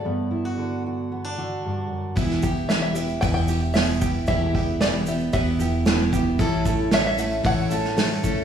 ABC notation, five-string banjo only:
X:1
M:4/4
L:1/16
Q:1/4=114
K:Edor
V:1 name="Five-string banjo"
d12 z4 | z4 e e3 g g3 e4 | e4 d4 e6 z2 | z4 e e3 f8 |]